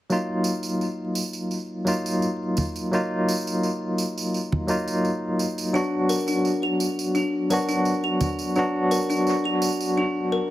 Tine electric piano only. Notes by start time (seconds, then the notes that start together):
0.10 F#3 A#3 D#4 F4
1.85 F#3 A#3 D#4 F4
2.92 F#3 A#3 D#4 F4
4.67 F#3 A#3 D#4 F4
5.73 F#3 B3 D4 F#4
7.50 F#3 B3 D4 F#4
8.56 F#3 B3 D4 F#4